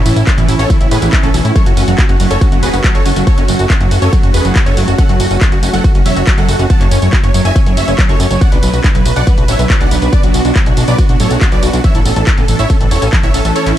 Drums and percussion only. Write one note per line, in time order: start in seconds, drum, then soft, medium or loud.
0.06 open hi-hat loud
0.06 ride medium
0.06 tambourine medium
0.16 closed hi-hat medium
0.16 tambourine soft
0.27 kick loud
0.27 clap loud
0.27 closed hi-hat medium
0.27 ride medium
0.27 tambourine soft
0.38 closed hi-hat medium
0.49 open hi-hat loud
0.49 ride medium
0.49 tambourine medium
0.59 closed hi-hat medium
0.59 tambourine soft
0.70 kick loud
0.70 closed hi-hat medium
0.70 ride medium
0.70 tambourine soft
0.81 closed hi-hat medium
0.91 open hi-hat loud
0.91 ride medium
0.91 tambourine medium
1.02 closed hi-hat medium
1.02 tambourine soft
1.13 kick loud
1.13 clap loud
1.13 closed hi-hat medium
1.13 ride medium
1.13 tambourine soft
1.23 closed hi-hat medium
1.34 open hi-hat loud
1.34 ride medium
1.34 tambourine medium
1.45 closed hi-hat medium
1.45 tambourine soft
1.56 kick loud
1.56 closed hi-hat medium
1.56 ride medium
1.56 tambourine soft
1.66 closed hi-hat medium
1.77 open hi-hat loud
1.77 ride medium
1.77 tambourine medium
1.88 closed hi-hat medium
1.88 tambourine soft
1.98 kick loud
1.98 clap loud
1.98 closed hi-hat medium
1.98 ride medium
1.98 tambourine soft
2.09 closed hi-hat medium
2.20 open hi-hat loud
2.20 ride medium
2.20 tambourine medium
2.31 closed hi-hat medium
2.31 tambourine soft
2.41 kick loud
2.41 closed hi-hat medium
2.41 ride medium
2.41 tambourine soft
2.52 closed hi-hat medium
2.63 open hi-hat loud
2.63 ride medium
2.63 tambourine medium
2.73 closed hi-hat medium
2.73 tambourine soft
2.84 kick loud
2.84 clap loud
2.84 closed hi-hat medium
2.84 ride medium
2.84 tambourine soft
2.95 closed hi-hat medium
3.06 open hi-hat loud
3.06 ride medium
3.06 tambourine medium
3.16 closed hi-hat medium
3.16 tambourine soft
3.27 kick loud
3.27 closed hi-hat medium
3.27 ride medium
3.27 tambourine soft
3.38 closed hi-hat medium
3.48 open hi-hat loud
3.48 ride medium
3.48 tambourine medium
3.59 closed hi-hat medium
3.59 tambourine soft
3.70 kick loud
3.70 clap loud
3.70 closed hi-hat medium
3.70 ride medium
3.70 tambourine soft
3.81 closed hi-hat medium
3.91 open hi-hat loud
3.91 ride medium
3.91 tambourine medium
4.02 closed hi-hat medium
4.02 tambourine soft
4.13 kick loud
4.13 closed hi-hat medium
4.13 ride medium
4.13 tambourine soft
4.23 closed hi-hat medium
4.34 open hi-hat loud
4.34 ride medium
4.34 tambourine medium
4.45 closed hi-hat medium
4.45 tambourine soft
4.56 kick loud
4.56 clap loud
4.56 closed hi-hat medium
4.56 ride medium
4.56 tambourine soft
4.66 closed hi-hat medium
4.77 open hi-hat loud
4.77 ride medium
4.77 tambourine medium
4.88 closed hi-hat medium
4.88 tambourine soft
4.98 kick loud
4.98 closed hi-hat medium
4.98 ride medium
4.98 tambourine soft
5.09 closed hi-hat medium
5.20 open hi-hat loud
5.20 ride medium
5.20 tambourine medium
5.31 closed hi-hat medium
5.31 tambourine soft
5.41 kick loud
5.41 clap loud
5.41 closed hi-hat medium
5.41 ride medium
5.41 tambourine soft
5.52 closed hi-hat medium
5.63 open hi-hat loud
5.63 ride medium
5.63 tambourine medium
5.74 closed hi-hat medium
5.74 tambourine soft
5.84 kick loud
5.84 closed hi-hat medium
5.84 ride medium
5.84 tambourine soft
5.95 closed hi-hat medium
6.06 open hi-hat loud
6.06 ride medium
6.06 tambourine medium
6.16 closed hi-hat medium
6.16 tambourine soft
6.27 kick loud
6.27 clap loud
6.27 closed hi-hat medium
6.27 ride medium
6.27 tambourine soft
6.38 closed hi-hat medium
6.49 open hi-hat loud
6.49 ride medium
6.49 tambourine medium
6.59 closed hi-hat medium
6.59 tambourine soft
6.70 kick loud
6.70 closed hi-hat medium
6.70 ride medium
6.70 tambourine soft
6.81 clap soft
6.81 closed hi-hat medium
6.91 open hi-hat loud
6.91 ride medium
6.91 tambourine medium
7.02 closed hi-hat medium
7.02 tambourine soft
7.13 kick loud
7.13 clap loud
7.13 closed hi-hat medium
7.13 ride medium
7.13 tambourine soft
7.24 closed hi-hat medium
7.34 open hi-hat loud
7.34 ride medium
7.34 tambourine medium
7.45 closed hi-hat medium
7.45 tambourine soft
7.56 kick loud
7.56 closed hi-hat medium
7.56 ride medium
7.56 tambourine soft
7.66 closed hi-hat medium
7.77 open hi-hat loud
7.77 ride medium
7.77 tambourine medium
7.88 closed hi-hat medium
7.88 tambourine soft
7.99 kick loud
7.99 clap loud
7.99 closed hi-hat medium
7.99 ride medium
7.99 tambourine soft
8.09 closed hi-hat medium
8.20 open hi-hat loud
8.20 ride medium
8.20 tambourine medium
8.31 closed hi-hat medium
8.31 tambourine soft
8.41 kick loud
8.41 closed hi-hat medium
8.41 ride medium
8.41 tambourine soft
8.52 closed hi-hat medium
8.63 open hi-hat loud
8.63 ride medium
8.63 tambourine medium
8.74 closed hi-hat medium
8.74 tambourine soft
8.84 kick loud
8.84 clap loud
8.84 closed hi-hat medium
8.84 ride medium
8.84 tambourine soft
8.95 closed hi-hat medium
9.06 open hi-hat loud
9.06 ride medium
9.06 tambourine medium
9.16 closed hi-hat medium
9.16 tambourine soft
9.27 kick loud
9.27 closed hi-hat medium
9.27 ride medium
9.27 tambourine soft
9.38 closed hi-hat medium
9.48 open hi-hat loud
9.48 ride medium
9.48 tambourine medium
9.59 closed hi-hat medium
9.59 tambourine soft
9.70 kick loud
9.70 clap loud
9.70 closed hi-hat medium
9.70 ride medium
9.70 tambourine soft
9.81 closed hi-hat medium
9.91 open hi-hat loud
9.91 ride medium
9.91 tambourine medium
10.02 closed hi-hat medium
10.02 tambourine soft
10.13 kick loud
10.13 closed hi-hat medium
10.13 ride medium
10.13 tambourine soft
10.23 closed hi-hat medium
10.34 open hi-hat loud
10.34 ride medium
10.34 tambourine medium
10.45 closed hi-hat medium
10.45 tambourine soft
10.56 kick loud
10.56 clap loud
10.56 closed hi-hat medium
10.56 ride medium
10.56 tambourine soft
10.66 closed hi-hat medium
10.77 open hi-hat loud
10.77 ride medium
10.77 tambourine medium
10.88 closed hi-hat medium
10.88 tambourine soft
10.98 kick loud
10.98 closed hi-hat medium
10.98 ride medium
10.98 tambourine soft
11.09 closed hi-hat medium
11.20 open hi-hat loud
11.20 ride medium
11.20 tambourine medium
11.31 closed hi-hat medium
11.31 tambourine soft
11.41 kick loud
11.41 clap loud
11.41 closed hi-hat medium
11.41 ride medium
11.41 tambourine soft
11.52 closed hi-hat medium
11.63 open hi-hat loud
11.63 ride medium
11.63 tambourine medium
11.73 closed hi-hat medium
11.73 tambourine soft
11.84 kick loud
11.84 closed hi-hat medium
11.84 ride medium
11.84 tambourine soft
11.95 closed hi-hat medium
12.05 open hi-hat loud
12.05 ride medium
12.05 tambourine medium
12.16 closed hi-hat medium
12.16 tambourine soft
12.27 kick loud
12.27 clap loud
12.27 closed hi-hat medium
12.27 ride medium
12.27 tambourine soft
12.38 closed hi-hat medium
12.48 open hi-hat loud
12.48 ride medium
12.48 tambourine medium
12.59 closed hi-hat medium
12.59 tambourine soft
12.70 kick loud
12.70 closed hi-hat medium
12.70 ride medium
12.70 tambourine soft
12.81 closed hi-hat medium
12.91 open hi-hat loud
12.91 ride medium
12.91 tambourine medium
13.02 closed hi-hat medium
13.02 tambourine soft
13.13 kick loud
13.13 clap loud
13.13 closed hi-hat medium
13.13 ride medium
13.13 tambourine soft
13.23 closed hi-hat medium
13.34 open hi-hat loud
13.34 ride medium
13.34 tambourine medium
13.45 closed hi-hat medium
13.45 tambourine soft
13.56 closed hi-hat medium
13.56 ride medium
13.56 tambourine soft
13.66 clap soft
13.66 closed hi-hat medium